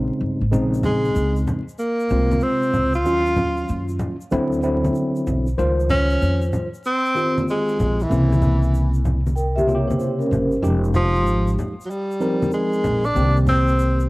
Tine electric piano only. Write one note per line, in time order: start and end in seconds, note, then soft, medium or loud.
0.00 0.41 C#3 medium
0.00 0.42 G#3 medium
0.00 0.42 C4 medium
0.00 0.42 D#4 medium
0.52 1.61 C#3 medium
0.52 1.61 G#3 medium
0.52 1.62 C4 medium
0.52 1.62 D#4 medium
2.10 2.94 C3 medium
2.10 2.94 G#3 medium
2.10 2.95 C4 medium
2.10 2.95 F4 medium
3.05 4.14 D#3 medium
3.05 4.15 F#3 medium
3.05 4.15 C#4 medium
3.05 4.15 F4 medium
4.31 4.59 D3 medium
4.31 4.60 F#3 medium
4.31 4.60 C4 medium
4.31 4.60 E4 loud
4.62 5.47 D3 medium
4.62 5.47 F#3 medium
4.62 5.47 C4 medium
4.62 5.47 E4 medium
5.58 6.67 D#3 medium
5.58 6.67 G3 medium
5.58 6.68 F4 medium
5.58 6.67 C5 medium
7.15 7.99 D#3 medium
7.15 8.00 C4 medium
7.15 8.00 F4 medium
7.15 7.99 G4 medium
8.09 9.19 C#3 medium
8.09 9.19 A#3 medium
8.09 9.19 C4 medium
8.09 9.20 E4 medium
9.67 10.52 C3 medium
9.67 10.52 C#3 medium
9.67 10.52 A#3 medium
9.67 9.77 F4 medium
9.75 10.56 G4 medium
10.62 11.72 F3 medium
10.62 11.72 G#3 medium
10.62 11.72 D#4 medium
10.62 11.72 G4 medium
12.20 13.04 F3 medium
12.20 13.05 C4 medium
12.20 13.05 D#4 medium
12.20 13.05 A#4 medium
13.14 13.24 D3 medium
13.14 14.09 A#3 medium
13.14 14.09 C4 medium
13.14 14.09 G4 medium
13.21 14.09 D#3 medium